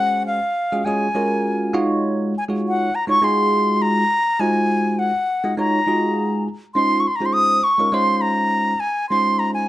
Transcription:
Already playing: G#3 C#4 F#4 G#4 C5 F#5
0.27 F5
0.72 G#3 C#4 F4 F#4 G#4
0.85 G#3 C#4 F4 F#4 G#4 G#5
1.15 G#3 C#4 F4 F#4 A#4
1.73 G#3 D#4 F4 F#4 C#5
2.38 G#5
2.48 G#3 D#4 F4 F#4 C#5
2.68 F#5
2.95 A#5
3.07 G#3 D#4 F4 F#4 C#5 C#6
3.22 G#3 D#4 F4 F#4 G#4 C6
3.82 A#5
4.39 G#3 D#4 F4 F#4 C5 G#5
4.99 F#5
5.44 G#3 D#4 F4 F#4 D#5
5.57 G#3 D#4 F4 F#4 C#5 A#5
5.87 G#3 D#4 F4 F#4 G#4
6.75 G#3 C#4 D#4 F4 C5 C6
7.00 C#6
7.07 C6
7.16 A#5
7.20 G#3 C#4 D#4 F4 C5
7.26 C6
7.33 D#6
7.64 C#6
7.78 G#3 C#4 D#4 F4 A#4
7.92 G#3 C#4 D#4 F4 C5 C6
8.21 A#5
8.80 G#5
9.10 G#3 C#4 D#4 F4 C5 C6
9.39 A#5
9.54 G#5

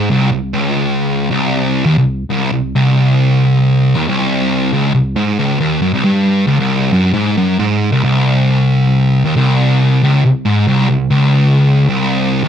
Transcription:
Already playing: G#2
0.11 C2
0.32 C2
0.54 C#2
1.31 C2
1.86 D#2
1.98 C2
2.30 C2
2.52 C2
2.76 C2
3.96 D#2
4.08 C2
4.73 C#2
4.95 C2
5.16 G#2
5.39 C#2
5.60 D#2
5.82 F#2
5.94 C2
6.05 G2
6.47 C#2
6.60 C2
6.93 F#2
7.14 G#2
7.38 F#2
7.59 G#2
7.92 C2
8.04 C2
9.25 D#2
9.36 C2
10.03 C#2
10.25 C2
10.45 G#2
10.68 C2
10.90 C2
11.10 C#2
11.89 C2
12.44 D#2

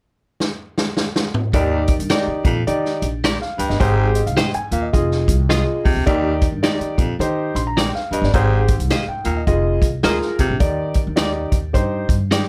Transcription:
0.40 snare
0.78 snare
0.97 snare
1.16 snare
1.34 mid tom
1.53 D#2 D#3 D#4 G4 D5, kick, closed hi-hat
1.88 kick, closed hi-hat
1.99 G2, closed hi-hat
2.10 D#4 G4 A#4 D5, snare, closed hi-hat
2.27 muted upright bass stroke
2.45 F2 A#2, kick, closed hi-hat
2.67 D#3 D#4 G4 D5, closed hi-hat
2.85 snare
3.02 A#1, closed hi-hat
3.24 G4 A#4 D5, snare, closed hi-hat
3.42 F5, snare
3.58 D2 G2 G5, closed hi-hat
3.69 G1 D#5, snare
3.80 G#1 G#2 G4 G#4 C5, kick, closed hi-hat
4.15 D#5, closed hi-hat
4.26 C2 F5, closed hi-hat
4.37 G4 C5 D#5 G5, snare, closed hi-hat
4.54 G#5, muted upright bass stroke, closed hi-hat
4.71 D#2 A#2 F5, closed hi-hat
4.82 D#5
4.93 F1 F4 G#4 D#5, kick, closed hi-hat
5.11 snare
5.28 C2, kick, closed hi-hat
5.49 F4 G#4 D#5, snare, closed hi-hat
5.85 D2 C3, kick, open hi-hat
5.96 D2
6.06 D#2 D#3 D#4 G4 D5, kick, closed hi-hat
6.42 kick, closed hi-hat
6.52 G2
6.63 D#4 G4 D5, snare, closed hi-hat
6.81 muted upright bass stroke, closed hi-hat
6.97 F2 A#2, kick, closed hi-hat
7.19 D#3 D#4 G4 C5, closed hi-hat
7.55 A#1 C6, closed hi-hat
7.67 A#5
7.77 D#4 G4 D5 G5, snare, closed hi-hat
7.95 F5, snare
8.11 D2 G2 D#5, closed hi-hat
8.22 G1 D5, snare
8.33 G#1 G#2 G4 G#4 C5, kick, closed hi-hat
8.68 kick, closed hi-hat
8.79 C2, closed hi-hat
8.90 G4 C5 D#5 F5, snare, closed hi-hat
9.08 G5, muted upright bass stroke
9.25 D#2 A#2, closed hi-hat
9.37 D#5
9.47 F1 F4 G#4 D#5, kick, closed hi-hat
9.82 C2, kick, closed hi-hat
10.03 D2 F4 G#4 A#4 C5 D#5, snare, closed hi-hat
10.22 snare
10.39 C2 C3, kick, closed hi-hat
10.51 A#1
10.60 D#2 D#3 D#4 G4 D5, kick, closed hi-hat
10.94 kick, closed hi-hat
11.07 D#2
11.16 D#4 G4 D5, snare, closed hi-hat
11.52 D#2, kick, closed hi-hat
11.73 G2 D#4 G4 C5, kick, closed hi-hat
12.09 G2, kick, closed hi-hat
12.31 D#4 G4 D5 G5, snare, closed hi-hat

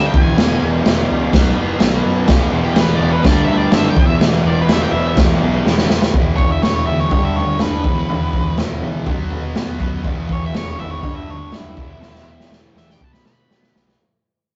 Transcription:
Already playing: G2 D3 G3 B3
0.06 G5
0.14 E1 E2 B2 E3, kick
0.22 G#5
0.36 E1 E2 B2 E3, snare, crash
0.60 E1 B2 E3
0.83 E1 E2 B2 E3, snare, crash
1.09 C#2 B2 E3
1.31 B1 B2 F#3 B3, kick, snare, crash
1.55 F#1 F#3 B3
1.79 B1 B2 F#3 B3, snare, crash
2.05 F#2
2.25 E1 E2 B2 E3, kick, snare, crash
2.51 E1 B2 E3
2.65 G4
2.74 E1 E2 B2 E3, snare, crash
2.80 B4
2.95 E1 E3 D5
3.02 B2
3.12 B4
3.24 G1 G2 D3 G3 D5, kick, snare, crash
3.45 D2 G3 E5
3.51 D3
3.57 D5
3.71 F#1 G2 D3 E5, snare, crash
3.75 G3
3.89 G5
3.96 E1 E2 B2 E3, kick
4.06 E5
4.18 E1 E2, snare, crash
4.23 B2 E3
4.42 E1 E3
4.47 B2 D5
4.61 B4
4.67 E1 E2, snare, crash
4.71 B2 E3 E5
4.83 G5
4.91 E1 E3 E5
4.96 B2
5.17 E1 E2 B2 E3, kick, snare, crash
5.40 B1 E3
5.45 B2
5.64 E1 E2 B2 E3, snare
5.78 snare
5.89 E1, snare
6.02 snare
6.14 E1 E2 B2 E3, kick, floor tom
6.37 E2 C#5, kick, floor tom
6.52 E5
6.61 E1 E2 B2 E3 C#5, snare, floor tom
6.75 C#5
6.86 D2 E3 E5, floor tom
6.90 B2
7.00 C#5
7.11 G1 G2 D3 C#5, kick, floor tom
7.15 G3
7.25 E5
7.36 D2 C#5, floor tom
7.58 F#1 G2 D3 B4, snare, floor tom
7.62 G3
7.83 E1 E2 B2 E3, kick, floor tom
8.08 E1 E2 B2, floor tom
8.12 E3
8.33 E1, kick, floor tom
8.57 E1 E2 B2, snare, floor tom
8.61 E3
8.82 E1 E3, floor tom
8.87 B2
9.06 B1 B2 F#3 B3, kick, floor tom
9.31 B2, floor tom
9.55 B2 F#3 B3, snare, floor tom
9.80 F#2 F#3 B3, kick, floor tom
10.03 E1 E2 B2, kick, floor tom
10.07 E3
10.29 E2 C#5, kick, floor tom
10.45 E5
10.53 E1 E2 B2 E3 C#5, snare, floor tom
10.69 C#5
10.78 G#1 B2 E3 E5, floor tom
10.90 C#5
11.02 G1 G2 D3 G3 C#5, kick, floor tom
11.16 E5
11.27 D2 C#5, floor tom
11.52 F#1 G2 D3 G3 E4, snare, floor tom
11.76 E1 E2 B2 E3, kick, floor tom
11.99 E1 E2 B2 E3, snare
12.15 snare
12.26 E1
12.40 snare
12.50 E1 E2 B2, snare
12.54 E3
12.75 E1 B2 E3 E5, snare
12.90 G5, snare
13.00 B1 B2 F#3 B3 A5, kick
13.13 B5, snare
13.25 B2 B5, snare
13.49 B2 F#3 B3, snare
13.63 snare
13.75 B1 F#3 B3, snare
13.88 snare

